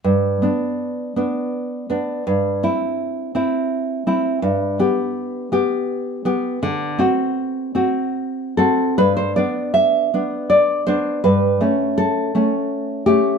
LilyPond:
\new Staff \with { instrumentName = "Nylon-string guitar" } { \time 3/4 \key g \major \tempo 4 = 82 << { r2. | r2. | r2. | r2 r8 a'8 |
b'16 c''16 d''8 e''4 d''8 c''8 | b'4 a'4. g'8 | } \\ { g,8 <b d'>4 <b d'>4 <b d'>8 | g,8 <c' e'>4 <c' e'>4 <c' e'>8 | g,8 <b g'>4 <b g'>4 <b g'>8 | d8 <c' fis'>4 <c' fis'>4 <c' fis'>8 |
g,8 <b d'>4 <b d'>4 <b d'>8 | g,8 <a cis'>4 <a cis'>4 <a cis'>8 | } >> }